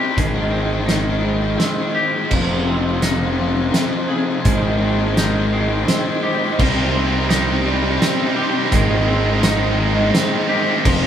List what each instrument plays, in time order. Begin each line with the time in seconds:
Already playing: clean electric guitar G3 C4 D#4 G4, string section D#4 G4 C5 G5
0.02 overdriven electric guitar C3 G3
0.10 overdriven electric guitar C3 G3
0.16 picked electric bass G#1, overdriven electric guitar G#2 D#3, clean electric guitar G#3, string section G#3, kick, closed hi-hat
0.26 overdriven electric guitar G#2 D#3
0.33 overdriven electric guitar G#2 D#3
0.41 overdriven electric guitar G#2 D#3
0.48 overdriven electric guitar G#2 D#3, clean electric guitar C4
0.56 overdriven electric guitar G#2 D#3
0.64 overdriven electric guitar G#2 D#3
0.72 overdriven electric guitar G#2 D#3
0.78 overdriven electric guitar G#2 D#3
0.86 overdriven electric guitar G#2 D#3, clean electric guitar D#4, snare, closed hi-hat
0.94 overdriven electric guitar G#2 D#3
1.02 overdriven electric guitar G#2 D#3
1.10 overdriven electric guitar G#2 D#3
1.18 overdriven electric guitar G#2 D#3
1.22 overdriven electric guitar G#2 D#3, clean electric guitar G#3
1.33 overdriven electric guitar G#2 D#3
1.40 overdriven electric guitar G#2 D#3
1.47 overdriven electric guitar G#2 D#3
1.56 overdriven electric guitar G#2 D#3, clean electric guitar C4
1.60 overdriven electric guitar G#2 D#3, snare, closed hi-hat
1.70 overdriven electric guitar G#2 D#3
1.77 overdriven electric guitar G#2 D#3
1.86 overdriven electric guitar G#2 D#3
1.94 overdriven electric guitar G#2 D#3, clean electric guitar G4
2.01 overdriven electric guitar G#2 D#3
2.09 overdriven electric guitar G#2 D#3
2.16 overdriven electric guitar G#2 D#3
2.24 overdriven electric guitar G#2 D#3
2.30 picked electric bass F1, overdriven electric guitar F2 C3, clean electric guitar F3, string section F5, kick, crash
2.38 overdriven electric guitar F2 C3
2.46 overdriven electric guitar F2 C3
2.54 overdriven electric guitar F2 C3
2.61 overdriven electric guitar F2 C3
2.67 overdriven electric guitar F2 C3, clean electric guitar C4
2.77 overdriven electric guitar F2 C3
2.86 overdriven electric guitar F2 C3
2.93 overdriven electric guitar F2 C3
3.01 overdriven electric guitar F2 C3, clean electric guitar D#4, snare, closed hi-hat
3.08 overdriven electric guitar F2 C3
3.15 overdriven electric guitar F2 C3
3.23 overdriven electric guitar F2 C3
3.30 overdriven electric guitar F2 C3
3.38 overdriven electric guitar F2 C3, clean electric guitar F3
3.46 overdriven electric guitar F2 C3
3.54 overdriven electric guitar F2 C3
3.61 overdriven electric guitar F2 C3
3.68 overdriven electric guitar F2 C3
3.73 overdriven electric guitar F2 C3, clean electric guitar C4, snare, closed hi-hat
3.84 overdriven electric guitar F2 C3
3.92 overdriven electric guitar F2 C3
3.99 overdriven electric guitar F2 C3
4.08 overdriven electric guitar F2 C3, clean electric guitar G#4
4.15 overdriven electric guitar F2 C3
4.22 overdriven electric guitar F2 C3
4.29 overdriven electric guitar F2 C3
4.37 overdriven electric guitar F2 C3
4.44 picked electric bass G#1, overdriven electric guitar G#2 D#3, clean electric guitar G#3, string section G5, kick, closed hi-hat
4.53 overdriven electric guitar G#2 D#3
4.60 overdriven electric guitar G#2 D#3
4.68 overdriven electric guitar G#2 D#3
4.77 overdriven electric guitar G#2 D#3
4.81 overdriven electric guitar G#2 D#3, clean electric guitar C4
4.92 overdriven electric guitar G#2 D#3
4.98 overdriven electric guitar G#2 D#3
5.06 overdriven electric guitar G#2 D#3
5.14 overdriven electric guitar G#2 D#3, clean electric guitar D#4, snare, closed hi-hat
5.22 overdriven electric guitar G#2 D#3
5.29 overdriven electric guitar G#2 D#3
5.38 overdriven electric guitar G#2 D#3
5.45 overdriven electric guitar G#2 D#3
5.52 overdriven electric guitar G#2 D#3, clean electric guitar G#3
5.60 overdriven electric guitar G#2 D#3
5.67 overdriven electric guitar G#2 D#3
5.75 overdriven electric guitar G#2 D#3
5.83 overdriven electric guitar G#2 D#3
5.88 overdriven electric guitar G#2 D#3, clean electric guitar C4, snare, closed hi-hat
5.99 overdriven electric guitar G#2 D#3
6.05 overdriven electric guitar G#2 D#3
6.14 overdriven electric guitar G#2 D#3
6.21 overdriven electric guitar G#2 D#3, clean electric guitar G4
6.28 overdriven electric guitar G#2 D#3
6.36 overdriven electric guitar G#2 D#3
6.44 overdriven electric guitar G#2 D#3
6.51 overdriven electric guitar G#2 D#3
6.59 picked electric bass C2, clean electric guitar C3, overdriven electric guitar C3 G3, distorted electric guitar C4 D#4, string section G4, kick, crash
6.66 overdriven electric guitar C3 G3, distorted electric guitar C4 D#4
6.74 overdriven electric guitar C3 G3, distorted electric guitar C4 D#4
6.82 overdriven electric guitar C3 G3, distorted electric guitar C4 D#4
6.89 overdriven electric guitar C3 G3, distorted electric guitar C4 D#4
6.95 overdriven electric guitar C3 G3, clean electric guitar C4, distorted electric guitar C4
6.99 distorted electric guitar D#4
7.04 overdriven electric guitar C3 G3, distorted electric guitar C4 D#4
7.11 overdriven electric guitar C3 G3, distorted electric guitar C4 D#4
7.20 overdriven electric guitar C3 G3, distorted electric guitar C4 D#4
7.27 overdriven electric guitar C3 G3, distorted electric guitar C4 D#4, clean electric guitar D#4, snare, closed hi-hat
7.35 overdriven electric guitar C3 G3, distorted electric guitar C4 D#4
7.42 overdriven electric guitar C3 G3, distorted electric guitar C4 D#4
7.51 overdriven electric guitar C3 G3, distorted electric guitar C4 D#4
7.58 overdriven electric guitar C3 G3, distorted electric guitar C4 D#4
7.66 overdriven electric guitar C3 G3, clean electric guitar G3, distorted electric guitar C4 D#4
7.73 overdriven electric guitar C3 G3, distorted electric guitar C4 D#4
7.80 overdriven electric guitar C3 G3, distorted electric guitar C4
7.85 overdriven electric guitar C3, distorted electric guitar D#4
7.90 overdriven electric guitar G3, distorted electric guitar C4 D#4
7.96 overdriven electric guitar C3 G3, distorted electric guitar C4
8.01 overdriven electric guitar C3 G3, clean electric guitar C4, distorted electric guitar D#4, snare, closed hi-hat
8.07 overdriven electric guitar C3, distorted electric guitar C4 D#4
8.12 overdriven electric guitar G3, distorted electric guitar C4 D#4
8.18 overdriven electric guitar C3 G3
8.23 overdriven electric guitar C3 G3, distorted electric guitar C4 D#4
8.30 overdriven electric guitar C3, distorted electric guitar C4 D#4
8.35 overdriven electric guitar G3, distorted electric guitar D#4, clean electric guitar G4
8.39 overdriven electric guitar C3 G3, distorted electric guitar C4
8.47 overdriven electric guitar C3 G3, distorted electric guitar C4 D#4
8.55 overdriven electric guitar C3 G3, distorted electric guitar C4 D#4
8.62 overdriven electric guitar C3 G3, distorted electric guitar C4 D#4
8.71 picked electric bass G#1, overdriven electric guitar G#2 D#3, clean electric guitar G#3, string section G#3, distorted electric guitar C4 D#4, kick, closed hi-hat
8.78 overdriven electric guitar G#2 D#3, distorted electric guitar C4 D#4
8.86 overdriven electric guitar G#2 D#3, distorted electric guitar C4 D#4
8.95 overdriven electric guitar G#2 D#3, distorted electric guitar C4 D#4
9.01 overdriven electric guitar G#2 D#3, distorted electric guitar C4 D#4
9.08 overdriven electric guitar G#2 D#3, clean electric guitar C4, distorted electric guitar C4 D#4
9.17 overdriven electric guitar G#2 D#3, distorted electric guitar C4 D#4
9.24 overdriven electric guitar G#2 D#3, distorted electric guitar C4 D#4
9.32 overdriven electric guitar G#2 D#3, distorted electric guitar C4 D#4
9.39 overdriven electric guitar G#2 D#3, distorted electric guitar C4 D#4, snare, closed hi-hat
9.44 overdriven electric guitar G#2, clean electric guitar D#4, distorted electric guitar D#4
9.48 overdriven electric guitar D#3, distorted electric guitar C4
9.55 overdriven electric guitar G#2 D#3, distorted electric guitar C4 D#4
9.62 overdriven electric guitar G#2 D#3, distorted electric guitar C4 D#4
9.70 overdriven electric guitar G#2 D#3, distorted electric guitar C4 D#4
9.78 overdriven electric guitar G#2 D#3, clean electric guitar G#3, distorted electric guitar C4 D#4
9.85 overdriven electric guitar G#2 D#3, distorted electric guitar C4 D#4
9.92 overdriven electric guitar G#2 D#3, distorted electric guitar C4 D#4
10.00 overdriven electric guitar G#2 D#3, distorted electric guitar C4 D#4
10.08 overdriven electric guitar G#2 D#3, distorted electric guitar C4 D#4
10.14 overdriven electric guitar G#2 D#3, clean electric guitar C4, distorted electric guitar C4 D#4, snare, closed hi-hat
10.24 overdriven electric guitar G#2 D#3, distorted electric guitar C4 D#4
10.31 overdriven electric guitar G#2 D#3, distorted electric guitar C4 D#4
10.38 overdriven electric guitar G#2 D#3, distorted electric guitar C4 D#4
10.46 overdriven electric guitar G#2 D#3, distorted electric guitar C4 D#4, clean electric guitar G4
10.54 overdriven electric guitar G#2 D#3, distorted electric guitar C4 D#4
10.60 overdriven electric guitar G#2 D#3, distorted electric guitar C4 D#4
10.68 overdriven electric guitar G#2 D#3, distorted electric guitar C4 D#4
10.76 overdriven electric guitar G#2 D#3, distorted electric guitar C4 D#4
10.84 picked electric bass F1, overdriven electric guitar F2 C3, clean electric guitar F3, distorted electric guitar G#3 D#4, string section G#3 D#4 C5 F5, kick, crash
10.91 overdriven electric guitar F2 C3, distorted electric guitar G#3 D#4
11.00 overdriven electric guitar F2 C3, distorted electric guitar G#3 D#4